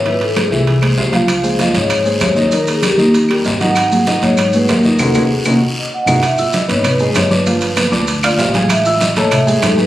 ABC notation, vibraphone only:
X:1
M:4/4
L:1/8
Q:1/4=194
K:D#phr
V:1 name="Vibraphone"
B =A G2 z2 ^B ^e- | ^e2 d c2 ^B c2 | A G =G2 z2 d f- | f2 d c2 B A2 |
=A G F2 z d f2 | [K:E] e2 d c B d c B- | B3 z2 =d =f2 | e2 d c e2 A B |]